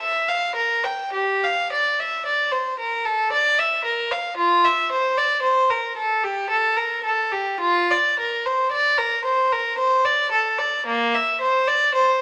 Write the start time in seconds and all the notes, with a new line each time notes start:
0.01 E5
0.28 F5
0.56 A#4
0.84 G5
1.13 G4
1.44 F5
1.72 D5
2.00 E5
2.26 D5
2.51 C5
2.79 A#4
3.05 A4
3.32 D5
3.59 E5
3.85 A#4
4.11 F5
4.37 F4
4.65 E5
4.92 C5
5.17 D5
5.42 C5
5.70 A#4
5.97 A4
6.24 G4
6.50 A4
6.76 A#4
7.04 A4
7.32 G4
7.61 F4
7.91 D5
8.20 A#4
8.45 C5
8.72 D5
8.98 A#4
9.25 C5
9.52 A#4
9.79 C5
10.05 D5
10.31 A4
10.58 D5
10.86 A#3
11.14 E5
11.41 C5
11.68 D5
11.95 C5